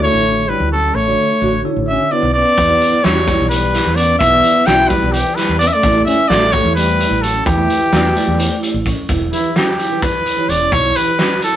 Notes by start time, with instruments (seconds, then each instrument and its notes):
0.01 tine electric piano D3 D4 F#4 C#5, trombone A3, vibraphone E4, trumpet C#5
0.14 fretless electric bass A1
0.25 vibraphone D4
0.49 trombone G3, vibraphone E4, trumpet B4
0.60 fretless electric bass D2
0.72 trombone F#3, vibraphone C#4, trumpet A4
0.94 fretless electric bass A1, trombone A3, vibraphone D4, trumpet C#5
1.06 tine electric piano D3 D4 F#4 C#5
1.41 fretless electric bass A1, tine electric piano D3 D4 F#4 C#5, vibraphone F#4
1.64 tine electric piano D3 D4 F#4 C#5, vibraphone E4
1.76 fretless electric bass A1
1.88 trombone C#4, vibraphone D4, trumpet E5
2.11 trombone B3, vibraphone E4, trumpet D5
2.23 fretless electric bass B1
2.34 trombone B3, vibraphone C#4, trumpet D5
2.58 fretless electric bass E2, vibraphone E4, kick, closed hi-hat
2.69 tine electric piano E3 E4 G4 D5
2.81 closed hi-hat
3.03 fretless electric bass E2, tine electric piano E3 E4 G4 C#5, trombone G3, vibraphone F#4, trumpet C#5, snare, closed hi-hat
3.26 tine electric piano E3 E4 G4 D5, vibraphone E4, kick, snare, closed hi-hat
3.40 fretless electric bass B1
3.49 trombone G3, vibraphone D4, trumpet B4, closed hi-hat
3.74 vibraphone E4, snare, closed hi-hat
3.86 fretless electric bass E2
3.95 trombone B3, vibraphone C#4, trumpet D5, closed hi-hat
4.19 fretless electric bass B1, trombone B3, vibraphone E4, trumpet E5, kick, closed hi-hat
4.31 tine electric piano E3 E4 G4 D5
4.43 closed hi-hat
4.66 fretless electric bass B1, tine electric piano E3 E4 G4 D5, trombone E4, vibraphone F#4, trumpet G5, snare, closed hi-hat
4.89 tine electric piano E3 E4 G4 D5, trombone G3, vibraphone E4, trumpet B4, kick, closed hi-hat
5.02 fretless electric bass B1
5.12 trombone E3, vibraphone D4, trumpet G4, closed hi-hat
5.35 trombone G3, vibraphone E4, trumpet B4, snare, closed hi-hat
5.49 fretless electric bass E2
5.59 trombone B3, vibraphone C#4, trumpet D5, closed hi-hat
5.67 trombone C#4, trumpet E5
5.73 trombone A3, trumpet D5
5.83 fretless electric bass A1, vibraphone E4, kick, closed hi-hat
5.94 tine electric piano A3 E4 G4 D5
6.05 trombone C#4, trumpet E5, closed hi-hat
6.28 fretless electric bass A1, tine electric piano A3 E4 G4 D5, trombone A3, vibraphone F#4, trumpet D5, snare, closed hi-hat
6.52 tine electric piano A3 E4 G4 E5, trombone A3, vibraphone E4, trumpet C#5, kick, closed hi-hat
6.64 fretless electric bass E2
6.75 trombone G3, vibraphone D4, trumpet B4, closed hi-hat
7.00 vibraphone E4, closed hi-hat
7.11 fretless electric bass A1
7.22 trombone F#3, vibraphone C#4, trumpet A4, closed hi-hat
7.46 fretless electric bass E2, trombone E3, vibraphone E4, trumpet G4, kick, closed hi-hat
7.57 tine electric piano A3 E4 G4 E5
7.70 closed hi-hat
7.92 fretless electric bass E2, tine electric piano A3 E4 G4 D5, vibraphone F#4, snare, closed hi-hat
8.16 tine electric piano A3 E4 G4 D5, vibraphone E4, closed hi-hat
8.27 fretless electric bass E2
8.39 vibraphone D4, closed hi-hat
8.63 vibraphone E4, closed hi-hat
8.74 fretless electric bass A1
8.86 vibraphone C#4, kick, closed hi-hat
9.09 fretless electric bass E1, vibraphone E4, kick, closed hi-hat
9.32 tine electric piano E3 E4 G4 B4, trumpet E4, closed hi-hat
9.56 vibraphone F#4, trumpet G4, snare, closed hi-hat
9.79 vibraphone E4, closed hi-hat
9.90 tine electric piano E3 E4 G4 B4
10.02 vibraphone D4, trumpet B4, kick, closed hi-hat
10.25 vibraphone E4, closed hi-hat
10.37 tine electric piano E3 E4 G4 C#5
10.49 fretless electric bass E1, vibraphone C#4, trumpet D5, closed hi-hat
10.72 fretless electric bass B1, vibraphone E4, trumpet C#5, kick, closed hi-hat
10.95 tine electric piano E3 E4 G4 B4, trumpet B4, closed hi-hat
11.19 vibraphone F#4, snare, closed hi-hat
11.42 vibraphone E4, trumpet A4, closed hi-hat